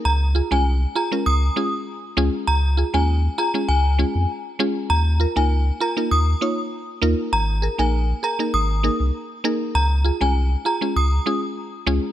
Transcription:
<<
  \new Staff \with { instrumentName = "Synth bell" } { \time 4/4 \key des \major \tempo 4 = 99 bes''16 r8 aes''16 r8 bes''16 r16 ees'''8. r4 r16 | bes''16 r8 aes''16 r8 bes''16 r16 aes''8. r4 r16 | bes''16 r8 aes''16 r8 bes''16 r16 ees'''8. r4 r16 | bes''16 r8 aes''16 r8 bes''16 r16 ees'''8. r4 r16 |
bes''16 r8 aes''16 r8 bes''16 r16 ees'''8. r4 r16 | }
  \new Staff \with { instrumentName = "Synth pluck" } { \time 4/4 \key des \major r8 <f' aes'>16 <aes des' f' aes'>16 r8 <f' aes'>16 <aes des' f' bes'>16 r8 <aes des' f' aes'>16 r8. <aes des' f' aes'>16 r16 | r8 <f' aes'>16 <aes des' f' aes'>16 r8 <f' aes'>16 <aes des' f' aes'>16 r8 <aes des' f' aes'>16 r8. <aes des' f' aes'>16 r16 | r8 <f' bes'>16 <bes ees' f' bes'>16 r8 <f' bes'>16 <bes ees' f' bes'>16 r8 <bes ees' f' des''>16 r8. <bes ees' f' bes'>16 r16 | r8 <aes' bes'>16 <bes ees' aes' bes'>16 r8 <aes' bes'>16 <bes ees' aes' bes'>16 r8 <bes ees' aes' bes'>16 r8. <bes ees' aes' bes'>16 r16 |
r8 <f' aes'>16 <aes des' f' aes'>16 r8 <f' aes'>16 <aes des' f' aes'>16 r8 <aes des' f' aes'>16 r8. <aes des' f' aes'>16 r16 | }
  \new Staff \with { instrumentName = "Sub bass" } { \clef bass \time 4/4 \key des \major des,8. c,8. r8 des,8 r4 des,16 r16 | des,8. ees,8. r8 des,8. f,16 r4 | ees,8. des,8. r8 ees,8 r4 ees,16 r16 | aes,,8. bes,,8. r8 aes,,8. c,16 r4 |
des,8. c,8. r8 des,8 r4 des,16 r16 | }
>>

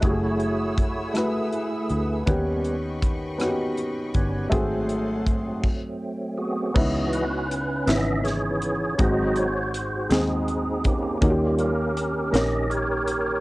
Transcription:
<<
  \new Staff \with { instrumentName = "String section" } { \time 6/8 \key cis \minor \tempo 4. = 54 <e'' fis'' gis'' e'''>2. | <dis'' g'' b'' cis'''>2. | <fis'' gis'' a'' bis''>4. r4. | r2. |
r2. | r2. | }
  \new Staff \with { instrumentName = "Tonewheel organ" } { \time 6/8 \key cis \minor << { cis''4. r4. | r2. | r2 r8 gis'8~ | gis'8 b'4 e''8 cis''4 |
dis''8 cis''8 bis'8 gis'4 g'8~ | g'8 ais'4 dis''8 cis''4 | } \\ { <e' fis'>4. r4. | r2. | r2 r8 <b fis'>8~ | <b fis'>8 cis'4. <e gis'>4 |
<fis' bis'>4. <bis dis'>4 <ais cis'>8~ | <ais cis'>8 <cis' g'>4. <g' ais'>4 | } >> }
  \new Staff \with { instrumentName = "Tonewheel organ" } { \time 6/8 \key cis \minor <a gis'>2. | <g b cis'>8 r2 <g b cis'>8 | <fis a bis>2. | <e b dis''>8 r4 <e b dis''>8 r4 |
<fis bis dis'>8 r2 r8 | <g cis' eis'>8 r2 r8 | }
  \new Staff \with { instrumentName = "Upright piano" } { \time 6/8 \key cis \minor <a e' fis' g' gis'>4 r8 <a e' fis' b'>4 r8 | <b cis' dis' g'>4 r8 <b cis' dis' fis' g'>4 r8 | <a bis fis' gis'>4 r2 | <b cis' dis' e'>4 r8 <b cis' dis' e'>4 r8 |
<gis bis dis' fis'>4 r8 <gis bis dis' gis'>4 r8 | <ais cis' dis' fis' g'>4 r8 <ais cis' dis' ais'>4 r8 | }
  \new Staff \with { instrumentName = "Upright piano" } { \clef bass \time 6/8 \key cis \minor r2. | dis4. r4. | gis,4. r4. | cis4. r4. |
gis,4. r4. | dis4. r4. | }
  \new Staff \with { instrumentName = "Fingered electric bass" } { \clef bass \time 6/8 \key cis \minor fis,,2~ fis,,8 d,8 | dis,2~ dis,8 g,,8 | gis,,4. r4. | cis,4. gis,,4. |
gis,,4. dis,4. | dis,4. ais,,4. | }
  \new DrumStaff \with { instrumentName = "Drums" } \drummode { \time 6/8 <hh bd>8 hh8 <hh bd>8 <hh ss>8 hh8 hh8 | <hh bd>8 hh8 <hh bd>8 <hh ss>8 hh8 <hh bd>8 | <hh bd>8 hh8 <hh bd>8 <cymc bd>4. | <cymc bd>8 hh8 hh8 <hh sn>8 <hh sn>8 hh8 |
<hh bd>8 hh8 hh8 <hh sn>8 hh8 <hh bd>8 | <hh bd>8 hh8 hh8 <hh sn>8 hh8 hh8 | }
>>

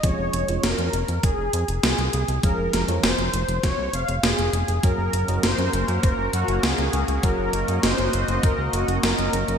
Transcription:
<<
  \new Staff \with { instrumentName = "Supersaw synth" } { \time 4/4 \key des \major \tempo 4 = 100 des''4 bes'4 aes'4 aes'4 | bes'4 c''4 des''8 f''8 aes'4 | bes'4 c''4 bes'8 ges'8 aes'4 | bes'4 c''4 bes'8 ges'8 bes'4 | }
  \new Staff \with { instrumentName = "Analog synth pad" } { \time 4/4 \key des \major << { r1 | r1 | bes'1 | ees''1 | } \\ { r1 | r1 | <bes des' ges'>1~ | <bes des' ges'>1 | } >> }
  \new Staff \with { instrumentName = "FM electric piano" } { \time 4/4 \key des \major <f aes des' f' aes'>8. <f aes des' f' des''>16 r2. | <f aes des' f' aes'>8. <f aes des' f' des''>16 r2. | <ges bes des' ges' bes'>8. <ges bes des' ges' ees''>16 r2. | <ges bes des' ges' bes'>8. <ges bes des' ges' ees''>16 r2. | }
  \new Staff \with { instrumentName = "Analog synth bass" } { \clef bass \time 4/4 \key des \major f,,16 f,,16 f,,16 f,,16 f,,16 f,16 f,,16 f,16 f,,16 f,,16 f,16 f,,16 c,16 c,16 c,16 c,16 | f,,16 f,,16 f,,16 f,16 f,,16 f,,16 f,,16 f,,16 f,,16 c,16 f,,16 f,,16 f,,16 f,,16 f,,16 f,,16 | ges,,16 ges,,16 ges,,16 ges,,16 ges,,16 ges,16 ges,,16 ges,16 ges,,16 ges,,16 ges,16 ges,,16 des,16 des,16 des,16 des,16 | ges,,16 ges,,16 ges,,16 ges,16 ges,,16 ges,,16 ges,,16 ges,,16 ges,,16 des,16 ges,,16 ges,,16 ges,,16 ges,,16 ges,,16 ges,,16 | }
  \new DrumStaff \with { instrumentName = "Drums" } \drummode { \time 4/4 <hh bd>8 hh16 hh16 <hh sn>16 hh16 hh16 hh16 <hh bd>8 hh16 hh16 <hh sn>16 hh16 hh16 hh16 | <hh bd>8 <hh sn>16 hh16 <hh sn>16 hh16 hh16 hh16 <hh bd sn>8 hh16 hh16 <hh sn>16 hh16 hh16 hh16 | <hh bd>8 hh16 hh16 <hh sn>16 hh16 hh16 hh16 <hh bd>8 hh16 hh16 <hh sn>16 hh16 hh16 hh16 | <hh bd>8 hh16 hh16 <hh sn>16 hh16 hh16 hh16 <hh bd>8 hh16 hh16 <hh sn>16 hh16 hh16 hh16 | }
>>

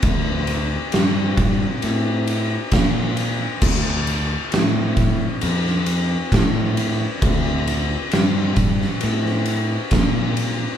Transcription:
<<
  \new Staff \with { instrumentName = "Fingered electric bass" } { \clef bass \time 4/4 \key d \minor \tempo 4 = 67 d,4 g,4 a,4 bes,4 | d,4 a,4 f,4 a,4 | d,4 g,4 a,4 bes,4 | }
  \new DrumStaff \with { instrumentName = "Drums" } \drummode { \time 4/4 <bd cymr>8 cymr8 <cymr sn>8 <bd cymr>8 cymr8 cymr8 <bd cymr sn>8 cymr8 | <cymc bd>8 cymr8 <cymr sn>8 <bd cymr sn>8 cymr16 sn16 cymr8 <bd cymr sn>8 cymr8 | <bd cymr>8 cymr8 <cymr sn>8 <bd cymr>16 sn16 cymr16 sn16 cymr8 <bd cymr sn>8 cymr8 | }
>>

